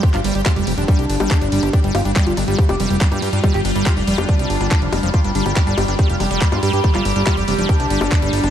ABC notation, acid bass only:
X:1
M:4/4
L:1/16
Q:1/4=141
K:none
V:1 name="Acid bass"
G D G, G D G, G D G, G D G, G D G, G | D G, G D G, G D G, G D G, G D G, G D | G, G D G, G D G, G D G, z D G, z _A, F, | G D G, G D G, G D G, G D G, G D G, G |
D G, G D G, G D G, G D G, G D G, G D |]